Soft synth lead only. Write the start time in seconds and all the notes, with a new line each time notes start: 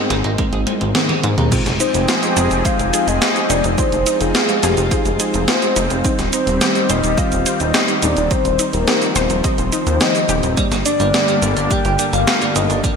1.80 C5
2.65 F5
3.07 D#5
3.50 D5
3.78 C5
4.20 G#4
4.63 G4
4.91 G#4
5.48 C5
6.33 C5
6.90 D#5
7.18 F5
7.60 D#5
8.03 D5
8.31 C5
8.73 A#4
9.16 C5
9.44 C5
10.01 D#5
10.85 D5
11.71 G5
12.13 F5
12.56 D#5